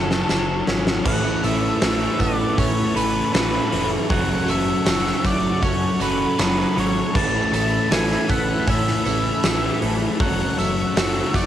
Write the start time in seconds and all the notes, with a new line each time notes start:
Already playing: F#1 C#3 F#3 A3 C#4 F#4 A4 C#5 F#5 C#6
0.11 snare
0.28 F#1 F#2 C#3 F#3, snare, tambourine
0.67 G#1 C#4, snare
0.87 snare
1.04 A1 A2 E3 A3 C#4 E4 A4 B4 E5 F#5 A5 C#6, kick, crash
1.42 A1 E3 A3 C#4 E4 A4 E5, open hi-hat, tambourine
1.80 A1 A2 E3 A3 C#4 E4 A4, snare, open hi-hat, tambourine
2.19 A1 E3 A3 B3 D5, kick, open hi-hat, tambourine
2.56 A2 E3 A3 C#4 C#5, kick, open hi-hat, tambourine
2.94 A1 E3 A3 C#4 E4 A4 B4, open hi-hat, tambourine
3.33 A1 A2 E3 A3 C#4 E4 B4, snare, open hi-hat, tambourine
3.37 A4
3.70 F1 E3 A3 E4 A4, open hi-hat
3.75 C#4
4.09 F#1 F#2 C#3 F#3 C#4 F#4 A4 F#5, kick, open hi-hat
4.47 F#1 C#3 F#3 C#4 F#4 A4 E5, open hi-hat, tambourine
4.85 F#1 F#2 C#3 F#3 C#4 F#4 A4, snare, open hi-hat, tambourine
5.06 snare
5.23 F#1 C#3 F#3 A3 D5, kick, open hi-hat, tambourine
5.61 F#2 C#3 F#3 C#4 C#5, kick, open hi-hat, tambourine
6.00 F#1 C#3 F#3 C#4 F#4 A4 B4, open hi-hat, tambourine
6.38 F#1 F#2 C#3 F#3 C#4 F#4 A4 B4, snare, open hi-hat, tambourine
6.76 G#1 C#3 F#3 C#4 F#4 A4 C#5, open hi-hat
7.14 A1 A2 E3 A3 C#4 E4 A4 E5 A5 B5, kick, crash
7.52 A1 A3 C#4 E4 A4 A5, open hi-hat, tambourine
7.56 E3
7.90 A1 A2 E3 A3 C#4 E4 A4 G#5, snare, open hi-hat, tambourine
8.11 snare
8.29 A1 E3 A3 B3 F#5, kick, open hi-hat, tambourine
8.67 A2 E3 A3 C#4 E5, kick, open hi-hat, tambourine
8.87 snare
9.05 A1 E3 A3 C#4 E4 A4, open hi-hat, tambourine
9.43 A1 A2 E3 A3 C#4 E4 A4, snare, open hi-hat, tambourine
9.81 A1 E3 A3 E4 A4, open hi-hat
9.85 C#4
10.19 F#1 F#2 C#3 F#3 C#4 F#4 A4 F#5 C#6, kick, open hi-hat, tambourine
10.55 F#1 C#3 F#3 A4 E5, open hi-hat
10.60 C#4 F#4, tambourine
10.94 F#1 F#2 C#3 F#3 C#4 F#4, snare, open hi-hat, tambourine
10.99 A4
11.33 F#1 C#3 F#3 A3 D5, kick, open hi-hat, tambourine